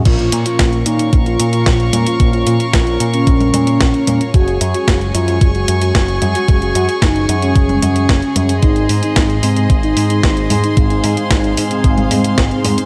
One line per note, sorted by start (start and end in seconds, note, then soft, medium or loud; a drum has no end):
0.05 0.29 A#1 medium
0.05 0.43 A#2 loud
0.05 0.43 A#3 medium
0.05 0.43 C#4 medium
0.05 0.38 F4 medium
0.05 0.43 F4 medium
0.05 0.43 A#4 loud
0.05 4.30 A#4 medium
0.05 8.59 C#5 medium
0.05 4.30 F5 medium
0.05 4.30 C#6 medium
0.05 kick loud
0.05 closed hi-hat medium
0.05 crash medium
0.19 closed hi-hat soft
0.32 0.44 A#2 loud
0.32 closed hi-hat medium
0.45 0.96 A#2 medium
0.45 0.96 A#3 medium
0.45 0.96 C#4 medium
0.45 0.78 F4 medium
0.45 0.96 F4 medium
0.45 0.96 A#4 medium
0.45 closed hi-hat medium
0.59 0.82 A#1 medium
0.59 kick loud
0.59 snare loud
0.59 closed hi-hat medium
0.73 closed hi-hat soft
0.86 1.09 A#2 medium
0.86 1.19 D#4 medium
0.86 closed hi-hat medium
0.99 2.17 A#2 medium
0.99 2.17 A#3 medium
0.99 2.17 C#4 medium
0.99 2.17 F4 medium
0.99 2.17 A#4 loud
0.99 closed hi-hat soft
1.13 1.36 A#1 medium
1.13 kick loud
1.13 closed hi-hat medium
1.26 1.48 F4 medium
1.26 closed hi-hat soft
1.40 1.63 A#2 medium
1.40 closed hi-hat loud
1.53 1.97 F4 medium
1.53 closed hi-hat medium
1.66 1.89 A#1 medium
1.66 kick loud
1.66 snare loud
1.66 closed hi-hat medium
1.80 closed hi-hat soft
1.93 2.05 A#2 medium
1.93 closed hi-hat medium
1.93 high conga medium
2.06 2.28 F4 medium
2.06 closed hi-hat medium
2.20 2.43 A#1 medium
2.20 2.57 A#2 loud
2.20 2.57 A#3 medium
2.20 2.57 C#4 medium
2.20 2.57 F4 medium
2.20 2.57 A#4 loud
2.20 kick loud
2.20 closed hi-hat soft
2.33 2.66 F4 loud
2.33 closed hi-hat soft
2.47 2.58 A#2 loud
2.47 closed hi-hat medium
2.60 3.11 A#2 medium
2.60 3.11 A#3 medium
2.60 3.10 C#4 medium
2.60 3.11 F4 medium
2.60 3.11 A#4 medium
2.60 closed hi-hat soft
2.73 2.96 A#1 medium
2.73 3.06 F4 medium
2.73 kick loud
2.73 snare loud
2.73 closed hi-hat medium
2.87 closed hi-hat soft
3.00 3.23 A#2 medium
3.00 closed hi-hat medium
3.13 4.31 A#2 medium
3.13 4.31 A#3 medium
3.13 4.23 C#4 loud
3.13 4.31 C#4 medium
3.13 4.31 F4 medium
3.13 4.31 A#4 loud
3.13 closed hi-hat medium
3.27 3.50 A#1 medium
3.27 kick loud
3.27 closed hi-hat medium
3.40 closed hi-hat soft
3.40 high conga medium
3.54 3.77 A#2 medium
3.54 closed hi-hat loud
3.54 high conga medium
3.67 closed hi-hat medium
3.81 3.92 A#1 loud
3.81 kick loud
3.81 snare loud
3.81 closed hi-hat medium
3.94 closed hi-hat soft
4.07 4.19 A#2 medium
4.07 closed hi-hat medium
4.07 high conga medium
4.21 closed hi-hat soft
4.34 4.57 F#1 loud
4.34 4.71 G#3 loud
4.34 4.71 C#4 medium
4.34 4.67 F#4 loud
4.34 4.71 F#4 medium
4.34 12.85 G#4 medium
4.34 4.71 G#4 loud
4.34 8.59 G#5 medium
4.34 8.59 C#6 medium
4.34 kick loud
4.34 closed hi-hat soft
4.48 closed hi-hat soft
4.61 4.72 F#2 loud
4.61 closed hi-hat medium
4.74 5.25 G#3 medium
4.74 5.25 C#4 medium
4.74 5.07 F#4 loud
4.74 5.25 F#4 medium
4.74 5.25 G#4 medium
4.74 closed hi-hat soft
4.88 5.11 F#1 medium
4.88 kick loud
4.88 snare loud
4.88 closed hi-hat soft
5.01 closed hi-hat soft
5.14 5.38 F#2 medium
5.14 5.47 F4 medium
5.14 closed hi-hat medium
5.28 6.45 G#3 medium
5.28 6.45 C#4 medium
5.28 6.45 F#4 medium
5.28 6.45 G#4 loud
5.28 closed hi-hat soft
5.41 5.64 F#1 medium
5.41 kick loud
5.41 closed hi-hat medium
5.55 5.77 F#4 medium
5.55 closed hi-hat soft
5.68 5.91 F#2 medium
5.68 closed hi-hat medium
5.81 6.25 F#4 medium
5.81 closed hi-hat medium
5.95 6.18 F#1 medium
5.95 kick loud
5.95 snare loud
5.95 closed hi-hat medium
6.08 closed hi-hat soft
6.22 6.33 F#2 loud
6.22 closed hi-hat medium
6.22 high conga medium
6.35 6.57 F#4 medium
6.35 closed hi-hat soft
6.48 6.71 F#1 medium
6.48 6.85 G#3 loud
6.48 6.85 C#4 medium
6.48 6.85 F#4 medium
6.48 6.85 G#4 loud
6.48 kick loud
6.48 closed hi-hat soft
6.62 6.95 F#4 loud
6.62 closed hi-hat soft
6.75 6.87 F#2 medium
6.75 closed hi-hat medium
6.89 7.39 G#3 medium
6.89 7.39 C#4 medium
6.89 7.39 F#4 medium
6.89 7.39 G#4 medium
6.89 closed hi-hat soft
7.02 7.25 F#1 medium
7.02 7.35 D#4 medium
7.02 kick loud
7.02 snare loud
7.02 closed hi-hat soft
7.16 closed hi-hat soft
7.29 7.52 F#2 medium
7.29 closed hi-hat medium
7.42 8.60 G#3 medium
7.42 8.60 C#4 medium
7.42 8.52 C#4 loud
7.42 8.60 F#4 medium
7.42 8.60 G#4 loud
7.42 closed hi-hat soft
7.56 7.79 F#1 medium
7.56 kick loud
7.56 closed hi-hat soft
7.69 closed hi-hat soft
7.69 high conga medium
7.82 8.05 F#2 medium
7.82 closed hi-hat medium
7.82 high conga medium
7.96 closed hi-hat soft
8.09 8.21 F#1 medium
8.09 kick loud
8.09 snare loud
8.09 closed hi-hat soft
8.22 closed hi-hat soft
8.36 8.59 F#2 medium
8.36 closed hi-hat medium
8.36 high conga medium
8.49 closed hi-hat soft
8.62 8.86 G#1 medium
8.62 9.00 G#2 loud
8.62 9.00 G#3 medium
8.62 9.00 C4 medium
8.62 9.00 D#4 medium
8.62 8.95 D#4 loud
8.62 9.00 G#4 loud
8.62 12.85 C5 medium
8.62 10.75 D#5 medium
8.62 12.85 C6 medium
8.62 kick loud
8.62 closed hi-hat soft
8.76 closed hi-hat soft
8.89 9.01 G#2 medium
8.89 open hi-hat loud
9.03 9.53 G#2 medium
9.03 9.53 G#3 medium
9.03 9.53 C4 medium
9.03 9.53 D#4 medium
9.03 9.36 D#4 loud
9.03 9.53 G#4 medium
9.03 closed hi-hat soft
9.16 9.39 G#1 medium
9.16 kick loud
9.16 snare loud
9.16 closed hi-hat medium
9.30 closed hi-hat soft
9.43 9.66 G#2 medium
9.43 9.76 C4 loud
9.43 open hi-hat loud
9.56 10.74 G#2 medium
9.56 10.74 G#3 medium
9.56 10.74 C4 medium
9.56 10.74 D#4 medium
9.56 10.74 G#4 loud
9.56 closed hi-hat soft
9.70 9.93 G#1 medium
9.70 kick loud
9.70 closed hi-hat soft
9.83 10.05 D#4 medium
9.83 closed hi-hat soft
9.97 10.20 G#2 medium
9.97 open hi-hat loud
10.10 10.54 D#4 medium
10.10 closed hi-hat soft
10.23 10.46 G#1 medium
10.23 kick loud
10.23 snare loud
10.23 closed hi-hat soft
10.37 closed hi-hat soft
10.50 10.62 G#2 loud
10.50 open hi-hat loud
10.50 high conga medium
10.64 10.86 D#4 medium
10.64 closed hi-hat soft
10.77 11.00 G#1 medium
10.77 11.14 G#2 medium
10.77 11.14 G#3 medium
10.77 11.14 C4 medium
10.77 11.14 D#4 medium
10.77 11.14 G#4 loud
10.77 12.85 F5 medium
10.77 kick loud
10.77 closed hi-hat soft
10.90 11.23 D#4 loud
10.90 closed hi-hat soft
11.04 11.15 G#2 medium
11.04 open hi-hat loud
11.17 11.68 G#2 medium
11.17 11.68 G#3 medium
11.17 11.68 C4 medium
11.17 11.68 D#4 medium
11.17 11.68 G#4 medium
11.17 closed hi-hat soft
11.31 11.54 G#1 medium
11.31 11.63 D#4 medium
11.31 kick loud
11.31 snare loud
11.31 closed hi-hat medium
11.44 closed hi-hat soft
11.57 11.80 G#2 medium
11.57 open hi-hat loud
11.71 12.85 G#2 medium
11.71 12.85 G#3 medium
11.71 12.85 C4 medium
11.71 12.81 C4 loud
11.71 12.85 D#4 medium
11.71 12.85 G#4 loud
11.71 closed hi-hat soft
11.84 12.07 G#1 medium
11.84 kick loud
11.84 closed hi-hat soft
11.98 closed hi-hat soft
11.98 high conga medium
12.11 12.34 G#2 medium
12.11 open hi-hat loud
12.11 high conga medium
12.24 closed hi-hat soft
12.38 12.49 G#1 loud
12.38 kick loud
12.38 snare loud
12.38 closed hi-hat soft
12.51 closed hi-hat soft
12.64 12.76 G#2 medium
12.64 open hi-hat loud
12.64 high conga medium
12.78 closed hi-hat medium